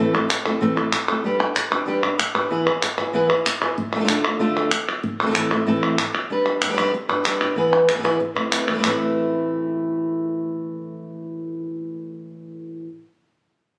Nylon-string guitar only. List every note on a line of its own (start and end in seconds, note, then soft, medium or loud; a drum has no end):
0.00 0.13 A2 medium
0.00 0.13 E3 medium
0.00 0.13 A3 medium
0.00 0.13 C4 medium
0.00 0.13 E4 medium
0.00 0.12 A4 medium
0.14 0.28 A3 soft
0.14 0.28 C4 medium
0.14 0.28 E4 medium
0.14 0.28 A4 medium
0.29 muted nylon-string guitar stroke medium
0.45 0.60 A3 medium
0.45 0.61 C4 medium
0.45 0.61 E4 medium
0.45 0.60 A4 medium
0.61 0.76 A2 medium
0.61 0.76 E3 medium
0.61 0.77 A3 medium
0.61 0.77 C4 loud
0.61 0.76 E4 medium
0.61 0.75 A4 loud
0.76 0.92 A3 medium
0.76 0.91 C4 soft
0.76 0.92 E4 medium
0.76 0.92 A4 medium
0.92 muted nylon-string guitar stroke medium
1.08 1.24 A3 medium
1.08 1.24 C4 medium
1.08 1.24 E4 medium
1.08 1.24 A4 medium
1.24 1.39 G3 medium
1.24 1.40 D4 medium
1.24 1.39 G4 medium
1.24 1.38 B4 medium
1.39 1.55 D4 medium
1.39 1.55 G4 medium
1.39 1.55 B4 medium
1.56 muted nylon-string guitar stroke medium
1.71 1.86 D4 medium
1.71 1.87 G4 medium
1.71 1.86 B4 medium
1.86 2.02 G3 medium
1.86 2.03 D4 medium
1.86 2.03 G4 loud
1.86 2.02 B4 medium
2.03 2.18 D4 soft
2.03 2.18 G4 medium
2.03 2.18 B4 medium
2.18 muted nylon-string guitar stroke medium
2.35 2.51 D4 soft
2.35 2.50 G4 medium
2.35 2.50 B4 medium
2.50 2.66 E3 medium
2.50 2.66 B3 medium
2.50 2.66 E4 medium
2.50 2.66 G#4 medium
2.50 2.65 B4 medium
2.66 2.82 E4 soft
2.66 2.82 G#4 medium
2.66 2.82 B4 medium
2.83 muted nylon-string guitar stroke medium
2.98 3.13 E4 soft
2.98 3.14 G#4 medium
2.98 3.13 B4 medium
3.13 3.29 E3 medium
3.13 3.29 B3 medium
3.13 3.29 E4 loud
3.13 3.29 G#4 loud
3.13 3.28 B4 loud
3.29 3.45 E4 medium
3.29 3.45 G#4 medium
3.29 3.45 B4 medium
3.46 muted nylon-string guitar stroke medium
3.61 3.78 E4 soft
3.61 3.77 G#4 medium
3.61 3.77 B4 medium
3.78 muted nylon-string guitar stroke medium
3.95 3.98 A3 soft
3.95 3.99 D4 medium
3.95 3.99 F4 medium
3.95 4.00 A4 medium
4.00 4.03 A3 medium
4.00 4.03 D4 medium
4.00 4.04 F4 medium
4.00 4.04 A4 medium
4.04 4.08 A3 medium
4.04 4.08 D4 medium
4.04 4.09 F4 medium
4.04 4.09 A4 medium
4.09 4.24 D3 medium
4.09 4.24 A3 medium
4.09 4.25 D4 medium
4.09 4.24 F4 medium
4.09 4.22 A4 loud
4.24 4.39 D4 soft
4.24 4.40 F4 medium
4.24 4.39 A4 medium
4.39 4.70 D3 medium
4.39 4.71 A3 medium
4.39 4.71 D4 loud
4.39 4.71 F4 loud
4.39 4.71 A4 loud
4.72 muted nylon-string guitar stroke medium
5.04 muted nylon-string guitar stroke medium
5.22 5.25 E3 soft
5.22 5.25 A3 soft
5.22 5.25 C4 medium
5.22 5.26 E4 medium
5.22 5.26 A4 medium
5.26 5.29 E3 medium
5.26 5.30 A3 medium
5.26 5.30 C4 medium
5.26 5.30 E4 medium
5.26 5.30 A4 medium
5.30 5.34 E3 medium
5.30 5.34 A3 medium
5.30 5.35 C4 medium
5.30 5.35 E4 medium
5.30 5.35 A4 medium
5.35 5.50 A2 medium
5.35 5.51 E3 medium
5.35 5.51 A3 medium
5.35 5.51 C4 medium
5.35 5.50 E4 medium
5.35 5.49 A4 medium
5.51 5.66 A3 medium
5.51 5.67 C4 medium
5.51 5.67 E4 medium
5.51 5.66 A4 medium
5.66 5.97 A2 medium
5.66 5.98 E3 loud
5.66 5.98 A3 medium
5.66 5.98 C4 medium
5.66 5.99 E4 medium
5.66 5.98 A4 loud
5.99 muted nylon-string guitar stroke medium
6.30 6.61 G3 medium
6.30 6.62 D4 medium
6.30 6.61 G4 medium
6.30 6.60 B4 medium
6.61 6.67 G3 medium
6.61 6.66 D4 soft
6.61 6.65 G4 medium
6.61 6.64 B4 medium
6.61 6.69 B4 medium
6.69 6.72 G3 medium
6.69 6.73 D4 medium
6.69 6.73 G4 medium
6.69 6.73 B4 medium
6.73 6.76 G3 medium
6.73 6.77 D4 medium
6.73 6.77 G4 medium
6.73 6.78 B4 medium
6.78 6.92 G3 loud
6.78 6.93 D4 medium
6.78 6.93 G4 loud
6.78 6.94 B4 medium
6.93 muted nylon-string guitar stroke medium
7.09 7.25 D4 medium
7.09 7.25 G4 medium
7.09 7.24 B4 medium
7.25 7.40 G3 medium
7.25 7.41 D4 medium
7.25 7.41 G4 medium
7.25 7.40 B4 medium
7.41 7.56 D4 medium
7.41 7.57 G4 medium
7.41 7.56 B4 medium
7.56 7.87 E3 medium
7.56 7.88 B3 medium
7.56 7.88 E4 medium
7.56 7.88 G#4 medium
7.56 7.87 B4 medium
7.89 7.93 E4 soft
7.89 7.94 G#4 soft
7.89 7.94 B4 soft
7.94 7.97 B3 medium
7.94 7.98 E4 medium
7.94 7.98 G#4 medium
7.94 7.99 B4 medium
7.98 8.02 B3 medium
7.98 8.03 E4 medium
7.98 8.03 G#4 medium
7.98 8.03 B4 medium
8.03 8.19 E3 loud
8.03 8.19 B3 medium
8.03 8.19 E4 medium
8.03 8.19 G#4 loud
8.03 8.20 B4 loud
8.20 muted nylon-string guitar stroke medium
8.35 8.50 A3 medium
8.35 8.51 C4 soft
8.35 8.51 E4 medium
8.35 8.51 B4 medium
8.51 8.67 A3 medium
8.51 8.67 C4 medium
8.51 8.67 E4 medium
8.51 8.66 B4 medium
8.67 8.73 E3 soft
8.67 8.71 A3 soft
8.67 8.71 C4 soft
8.67 8.70 E4 medium
8.67 8.70 B4 medium
8.67 8.74 B4 medium
8.74 8.77 E3 medium
8.74 8.77 A3 medium
8.74 8.78 C4 medium
8.74 8.78 E4 medium
8.74 8.79 B4 medium
8.78 8.82 E3 medium
8.78 8.82 A3 medium
8.78 8.82 C4 medium
8.78 8.83 E4 medium
8.78 8.83 B4 medium
8.83 12.86 A2 medium
8.83 12.86 E3 medium
8.83 12.87 A3 medium
8.83 12.87 C4 medium
8.83 12.87 E4 medium
8.83 12.87 B4 medium